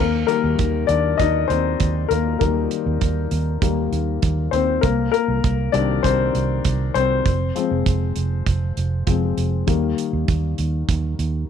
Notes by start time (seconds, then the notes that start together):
Already playing: A#4
0.00 D#2 A#3
0.27 D#3 G3 A#3 A#4, closed hi-hat
0.44 D#2
0.59 D#2, kick, closed hi-hat
0.87 D#2 D4 D5, closed hi-hat
1.17 D#2 D#4 D#5, kick, closed hi-hat
1.48 D#2 C4 C5, closed hi-hat
1.80 D#2, kick, closed hi-hat
2.09 D#2 A#3 A#4, closed hi-hat
2.39 D#2 D#3 G3 A#3 A#4, kick, closed hi-hat
2.71 closed hi-hat
2.86 D#2
3.01 D#2, kick, closed hi-hat
3.31 D#2, closed hi-hat
3.62 D#2 D#3 G3 A#3, kick, closed hi-hat
3.92 D#2, closed hi-hat
4.22 D#2, kick, closed hi-hat
4.51 D#2 C4 C5, closed hi-hat
4.81 C2 A#3 A#4, kick, closed hi-hat
5.12 A#3 A#4, closed hi-hat
5.28 C2
5.44 C2, kick, closed hi-hat
5.72 C2 D#3 G3 C4 D4 D5, closed hi-hat
6.03 C2 C4 C5, kick, closed hi-hat
6.35 C2, closed hi-hat
6.65 C2, kick, closed hi-hat
6.94 C2 C4 C5, closed hi-hat
7.26 F1, kick, closed hi-hat
7.55 F3 G#3 C4, closed hi-hat
7.71 F1
7.86 F1, kick, closed hi-hat
8.16 F1, closed hi-hat
8.46 F1, kick, closed hi-hat
8.77 F1, closed hi-hat
9.06 F1 F3 G#3 C4, kick, closed hi-hat
9.38 F1, closed hi-hat
9.67 D#2 D#3 G3 A#3, kick, closed hi-hat
9.98 closed hi-hat
10.13 D#2
10.28 D#2, kick, closed hi-hat
10.58 D#2, closed hi-hat
10.89 D#2, kick, closed hi-hat
11.19 D#2, closed hi-hat